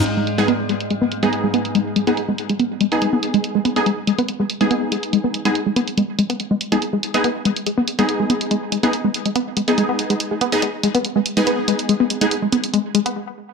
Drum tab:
CC |x---------------|----------------|----------------|----------------|
HH |x-xxx-xxx-xxx-xx|x-xxx-xxx-xxx-xx|x-xxx-xxx-xxx-xx|x-xxx-xxx-xxx-xx|

CC |----------------|----------------|----------------|----------------|
HH |x-xxx-xxx-xxx-xx|x-xxx-xxx-xxx-xx|x-xxx-xxx-xxx-xx|x-xxx-xxx-xx----|